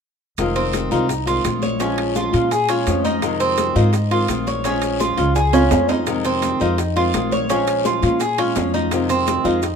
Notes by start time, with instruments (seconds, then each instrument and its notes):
0.38 upright bass F1, nylon-string guitar C3 D#3 G#3 C4 F4, high bongo, high conga, high timbale, long guiro, maracas
0.56 cuban tres C4, high bongo, high conga, high timbale
0.73 high bongo, high conga, high timbale, short guiro, maracas
0.91 upright bass C2, nylon-string guitar D#3 G#3 C4 F4, cuban tres D#4, high bongo, high conga, short guiro, maracas
1.09 muted nylon-string guitar stroke, high bongo, high conga, high timbale, long guiro, maracas
1.26 nylon-string guitar D#3 G#3 C4 F4, cuban tres F4, high conga, high timbale, maracas
1.45 upright bass A#1, nylon-string guitar G#3 C4 F4, high bongo, low bongo, high conga, high timbale, short guiro, maracas
1.62 cuban tres C#5, high bongo, high conga, short guiro, maracas
1.79 nylon-string guitar F3 G#3 C#4 F4, cuban tres C#4, high bongo, high conga, high timbale, long guiro, maracas
1.98 high bongo, high conga, high timbale
2.15 cuban tres F4, high bongo, high conga, short guiro, maracas
2.33 upright bass A#2, nylon-string guitar G#3 C#4 F4, high conga, high timbale, short guiro, maracas
2.51 cuban tres G#4, muted nylon-string guitar stroke, high bongo, high conga, high timbale, long guiro, maracas
2.69 nylon-string guitar G#3 C#4 F4, cuban tres C#4, high bongo, high conga, high timbale, maracas
2.87 upright bass F2, nylon-string guitar F3 G#3 C#4 F4, high bongo, low bongo, high conga, high timbale, short guiro, maracas
3.04 cuban tres D#4, high bongo, high conga, short guiro, maracas
3.22 nylon-string guitar C3 D#3 G#3 C4 F4, high bongo, high conga, high timbale, long guiro, maracas
3.40 cuban tres C4, high bongo, high conga, high timbale, maracas
3.58 high bongo, high conga, high timbale, short guiro, maracas
3.75 upright bass G#2, nylon-string guitar D#3 G#3 C4 F4, cuban tres D#4, high bongo, high conga, short guiro, maracas
3.93 muted nylon-string guitar stroke, high bongo, high timbale, long guiro, maracas
4.11 nylon-string guitar D#3 G#3 C4 F4, cuban tres F4, high conga, high timbale
4.28 upright bass A#1, nylon-string guitar D#3 G#3 C4 F4, high bongo, low bongo, high conga, high timbale, short guiro, maracas
4.47 cuban tres C#5, high bongo, high conga, short guiro, maracas
4.64 nylon-string guitar F3 G#3 C#4 F4, cuban tres C#4, high bongo, high timbale, long guiro, maracas
4.82 high bongo, high conga, high timbale, maracas
5.00 cuban tres F4, high bongo, high conga, short guiro, maracas
5.17 upright bass C#2, nylon-string guitar G#3 C#4 F4, high conga, high timbale, short guiro, maracas
5.35 cuban tres G#4, muted nylon-string guitar stroke, high bongo, high conga, high timbale, long guiro, maracas
5.53 nylon-string guitar G#3 C#4 F4, cuban tres C#4, high bongo, low timbale, maracas
5.71 upright bass F2, nylon-string guitar F3 G#3 C#4 F4, high bongo, low bongo, high conga, low timbale, short guiro, maracas
5.89 cuban tres D#4, high bongo, high conga, low timbale, short guiro, maracas
6.07 nylon-string guitar C3 D#3 G#3 C4 F4, high bongo, high conga, high timbale, long guiro, maracas
6.24 cuban tres C4, high bongo, high conga, high timbale, maracas
6.42 high bongo, high conga, high timbale, short guiro, maracas
6.60 upright bass F2, nylon-string guitar D#3 G#3 C4 F4, cuban tres D#4, high bongo, high conga, short guiro, maracas
6.78 muted nylon-string guitar stroke, high bongo, high conga, high timbale, long guiro, maracas
6.96 nylon-string guitar D#3 G#3 C4 F4, cuban tres F4, high conga, high timbale
7.14 upright bass A#1, nylon-string guitar D#3 G#3 C4 F4, high bongo, low bongo, high conga, high timbale, short guiro, maracas
7.32 cuban tres C#5, high bongo, high conga, short guiro, maracas
7.50 nylon-string guitar F3 G#3 C#4 F4, cuban tres C#4, high bongo, high conga, high timbale, long guiro, maracas
7.67 high bongo, high conga, high timbale, maracas
7.85 cuban tres F4, high bongo, high conga, short guiro, maracas
8.02 upright bass A#2, nylon-string guitar G#3 C#4 F4, high conga, high timbale, short guiro, maracas
8.20 cuban tres G#4, muted nylon-string guitar stroke, high bongo, high conga, high timbale, long guiro, maracas
8.38 nylon-string guitar G#3 C#4 F4, cuban tres C#4, high bongo, high conga, high timbale
8.56 upright bass F2, nylon-string guitar F3 G#3 C#4 F4, high bongo, low bongo, high conga, high timbale, low timbale, short guiro, maracas
8.74 cuban tres D#4, high bongo, high conga, short guiro, maracas
8.91 nylon-string guitar C3 D#3 G#3 C4 F4, high bongo, high conga, high timbale, long guiro, maracas
9.09 cuban tres C4, high bongo, high conga, high timbale, maracas
9.27 high bongo, high conga, high timbale, short guiro, maracas
9.44 upright bass F2, nylon-string guitar D#3 G#3 C4 F4, cuban tres D#4, high bongo, high conga, short guiro, maracas
9.62 muted nylon-string guitar stroke, high bongo, high conga, high timbale, long guiro, maracas